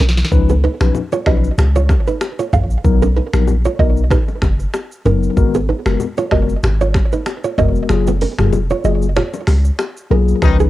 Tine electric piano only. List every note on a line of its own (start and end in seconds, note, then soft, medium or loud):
0.31 0.53 F3 medium
0.31 0.53 C#4 medium
0.31 0.53 D#4 medium
0.31 0.53 B4 loud
0.80 0.99 F3 medium
0.80 0.99 C#4 medium
0.80 1.00 D#4 medium
0.80 1.00 B4 medium
1.26 1.47 F3 medium
1.26 1.48 C#4 medium
1.26 1.48 D#4 medium
1.26 1.48 B4 medium
2.84 3.05 F#3 medium
2.84 3.06 B3 medium
2.84 3.06 D#4 medium
2.84 3.06 A#4 loud
3.33 3.52 F#3 medium
3.33 3.52 B3 medium
3.33 3.52 D#4 medium
3.33 3.52 A#4 medium
3.79 4.00 F#3 medium
3.79 4.00 B3 medium
3.79 4.00 D#4 medium
3.79 4.00 A#4 medium
5.05 5.35 F#3 medium
5.05 5.35 B3 medium
5.05 5.35 D#4 medium
5.05 5.35 A#4 medium
5.37 5.58 G#3 medium
5.37 5.58 B3 medium
5.37 5.58 F#4 medium
5.37 5.58 A#4 loud
5.86 6.05 G#3 medium
5.86 6.05 B3 medium
5.86 6.05 F#4 medium
5.86 6.05 A#4 medium
6.31 6.53 G#3 medium
6.31 6.53 B3 medium
6.31 6.53 F#4 medium
6.31 6.53 A#4 medium
7.58 7.87 G#3 medium
7.58 7.87 B3 medium
7.58 7.87 F#4 medium
7.58 7.88 A#4 medium
7.89 8.11 F#3 medium
7.89 8.11 A#3 medium
7.89 8.11 F4 medium
7.89 8.11 G#4 loud
8.38 8.57 F#3 medium
8.38 8.57 A#3 medium
8.38 8.57 F4 medium
8.38 8.58 G#4 medium
8.84 9.05 F#3 medium
8.84 9.06 A#3 medium
8.84 9.06 F4 medium
8.84 9.06 G#4 medium
10.10 10.40 F#3 medium
10.10 10.40 A#3 medium
10.10 10.40 F4 medium
10.10 10.40 G#4 medium
10.42 10.70 F3 medium
10.42 10.70 C#4 medium
10.42 10.70 D#4 medium
10.42 10.70 B4 loud